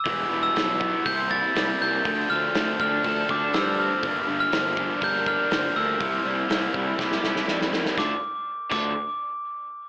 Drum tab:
CC |----------------|----------------|----------------|----------------|
HH |o---o---o---o---|o---o---o---o---|o---o---o---o---|o---o-----------|
SD |----o-------o---|----o-------o---|----o-------o---|----o---oooooooo|
BD |o-----o-o-o-----|o-----o-o-o-----|o-----o-o-o-----|o-----o-o-------|

CC |------x---------|
HH |----------------|
SD |o---------------|
BD |o-----o---------|